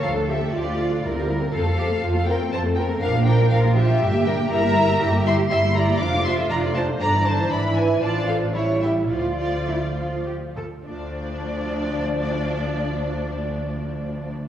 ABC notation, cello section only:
X:1
M:3/4
L:1/8
Q:1/4=119
K:Dm
V:1 name="Cello section"
A2 G F B2 | A G F C3 | D2 F2 G2 | B2 G2 E2 |
F4 D2 | E2 F2 E2 | F2 E F G A | D,,6- |
D,,6 |]